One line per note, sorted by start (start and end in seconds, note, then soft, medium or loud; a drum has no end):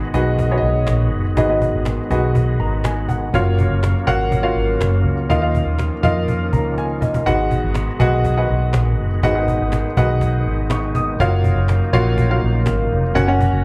0.00 0.10 G#2 medium
0.00 3.29 D#3 medium
0.00 3.30 G#3 medium
0.00 3.30 B3 medium
0.00 0.14 D#4 medium
0.00 0.14 F#4 medium
0.00 3.29 F#4 medium
0.00 0.14 G#4 medium
0.00 0.14 B4 medium
0.00 0.14 D#5 medium
0.14 0.60 B1 medium
0.14 0.44 D#4 medium
0.14 0.44 F#4 medium
0.14 0.44 G#4 medium
0.14 0.44 B4 medium
0.14 0.44 D#5 loud
0.14 cajon bass loud
0.39 cajon bass loud
0.51 1.21 D#4 medium
0.51 1.21 F#4 medium
0.51 1.21 G#4 medium
0.51 1.21 B4 medium
0.51 0.57 C#5 medium
0.58 1.24 D#5 medium
0.63 0.86 B1 medium
0.87 1.13 A#1 medium
0.87 cajon slap medium
0.87 cajon slap loud
1.13 1.35 F#1 medium
1.37 1.71 G#1 loud
1.37 2.07 G#2 medium
1.37 1.47 D#4 medium
1.37 1.47 F#4 medium
1.37 1.47 G#4 medium
1.37 1.47 B4 medium
1.37 1.47 D#5 medium
1.37 cajon bass loud
1.49 1.99 D#4 medium
1.49 1.99 F#4 medium
1.49 1.99 G#4 medium
1.49 1.99 B4 medium
1.49 1.99 D#5 medium
1.62 cajon bass medium
1.74 1.97 G#1 medium
1.85 cajon slap medium
1.85 cajon slap loud
2.10 2.56 B1 medium
2.10 2.91 D#4 medium
2.10 2.91 F#4 medium
2.10 2.91 G#4 medium
2.10 2.91 B4 medium
2.10 2.91 D#5 medium
2.10 cajon bass medium
2.35 cajon bass medium
2.60 3.30 G#1 medium
2.60 2.83 A#5 medium
2.84 3.07 G#5 medium
2.84 cajon slap medium
2.84 cajon slap loud
3.09 3.32 F#5 medium
3.09 cajon bass medium
3.33 3.68 F#1 loud
3.33 5.28 C#3 medium
3.33 5.28 F#3 medium
3.33 7.22 A#3 medium
3.33 7.22 C#4 medium
3.33 3.94 F4 medium
3.33 3.94 F#4 medium
3.33 3.94 A#4 medium
3.33 3.94 C#5 medium
3.33 3.94 F5 medium
3.33 cajon bass loud
3.59 cajon bass medium
3.70 3.93 F#1 medium
3.83 cajon slap medium
3.83 cajon slap loud
4.07 4.53 G#1 medium
4.07 4.37 F#4 medium
4.07 4.37 A#4 medium
4.07 4.37 C#5 medium
4.07 4.37 F5 medium
4.07 4.37 F#5 loud
4.07 cajon bass loud
4.32 cajon bass loud
4.43 5.14 F4 medium
4.43 5.14 F#4 medium
4.43 5.14 A#4 medium
4.43 5.14 C#5 medium
4.43 5.14 F5 medium
4.56 4.79 G#1 medium
4.80 5.03 F#1 loud
4.80 cajon slap medium
4.80 cajon slap loud
5.04 5.27 C#2 medium
5.29 5.64 D#2 loud
5.29 5.99 D#3 medium
5.29 11.15 D#3 medium
5.29 7.24 F3 medium
5.29 5.40 D#4 medium
5.29 5.40 F4 medium
5.29 5.40 A#4 medium
5.29 5.40 D#5 medium
5.29 5.40 F5 loud
5.29 cajon bass loud
5.42 5.92 D#4 medium
5.42 5.92 F4 medium
5.42 5.92 A#4 medium
5.42 5.92 D#5 medium
5.42 5.92 F5 medium
5.55 cajon bass medium
5.66 5.89 D#2 medium
5.79 cajon slap medium
6.03 6.49 F2 loud
6.03 6.83 D#4 medium
6.03 6.83 F4 medium
6.03 6.83 A#4 medium
6.03 6.84 D#5 medium
6.03 6.84 F5 loud
6.03 cajon bass loud
6.28 cajon bass medium
6.53 7.23 C#2 medium
6.53 6.76 A#5 medium
6.53 cajon bass medium
6.78 7.01 G#5 medium
6.78 cajon slap medium
7.01 7.24 D#5 medium
7.01 cajon bass medium
7.14 cajon bass medium
7.26 7.61 G#1 loud
7.26 7.96 G#2 medium
7.26 11.16 G#3 medium
7.26 11.16 B3 medium
7.26 7.86 F#4 medium
7.26 9.22 F#4 medium
7.26 7.86 G#4 medium
7.26 7.86 B4 medium
7.26 7.87 D#5 medium
7.26 7.86 F#5 loud
7.26 cajon bass loud
7.51 cajon bass medium
7.64 7.87 G#1 medium
7.74 cajon slap medium
7.74 cajon slap loud
8.00 8.46 B1 loud
8.00 8.30 F#4 loud
8.00 8.30 G#4 medium
8.00 8.30 B4 medium
8.00 8.30 D#5 medium
8.00 8.30 F#5 loud
8.00 cajon bass loud
8.25 cajon bass loud
8.37 9.07 F#4 medium
8.37 9.07 G#4 medium
8.37 9.08 B4 medium
8.37 9.08 D#5 medium
8.37 9.07 F#5 medium
8.50 8.73 B1 medium
8.73 8.99 A#1 medium
8.73 cajon slap medium
8.73 cajon slap loud
8.99 9.22 F#1 medium
9.22 9.57 G#1 loud
9.22 9.93 G#2 medium
9.22 13.12 D#4 medium
9.22 9.33 F#4 medium
9.22 9.33 G#4 medium
9.22 9.33 B4 medium
9.22 9.33 D#5 medium
9.22 9.33 F#5 loud
9.22 cajon bass loud
9.35 9.85 F#4 medium
9.35 9.85 G#4 medium
9.35 9.85 B4 medium
9.35 9.85 D#5 medium
9.35 9.85 F#5 medium
9.48 cajon bass medium
9.61 9.83 G#1 medium
9.72 cajon slap medium
9.72 cajon slap loud
9.97 10.43 B1 loud
9.97 10.77 F#4 medium
9.97 10.77 G#4 medium
9.97 10.77 B4 medium
9.97 10.77 D#5 medium
9.97 10.77 F#5 loud
9.97 cajon bass loud
10.21 cajon bass loud
10.46 11.16 G#1 medium
10.70 10.94 C#6 medium
10.70 cajon slap medium
10.70 cajon slap loud
10.95 11.42 D#6 medium
10.95 cajon bass medium
11.19 11.54 F#1 loud
11.19 13.13 C#3 medium
11.19 13.64 F#3 medium
11.19 13.64 A#3 medium
11.19 11.80 F4 medium
11.19 11.80 F#4 medium
11.19 11.80 A#4 medium
11.19 11.80 C#5 medium
11.19 11.80 F5 loud
11.19 cajon bass loud
11.44 cajon bass medium
11.56 11.79 F#1 loud
11.68 cajon slap medium
11.68 cajon slap loud
11.93 12.39 A#1 loud
11.93 12.23 F4 loud
11.93 12.23 F#4 medium
11.93 12.24 A#4 medium
11.93 12.23 C#5 medium
11.93 12.23 F5 loud
11.93 cajon bass medium
12.18 cajon bass loud
12.30 13.00 F4 medium
12.30 13.01 F#4 medium
12.30 13.01 A#4 medium
12.30 13.01 C#5 medium
12.30 13.01 F5 medium
12.43 12.65 A#1 medium
12.66 12.90 G#1 loud
12.66 cajon slap loud
12.92 13.15 F1 medium
13.14 13.50 F#1 medium
13.14 13.64 C#3 medium
13.14 13.26 C#4 medium
13.14 13.64 F#4 medium
13.14 13.26 F#4 medium
13.14 13.26 A#4 medium
13.14 13.26 C#5 medium
13.14 13.26 F#5 loud
13.14 cajon bass loud
13.28 13.64 C#4 medium
13.28 13.64 F#4 medium
13.28 13.64 A#4 medium
13.28 13.64 C#5 medium
13.28 13.64 F#5 medium
13.41 cajon bass medium
13.53 13.64 F#1 medium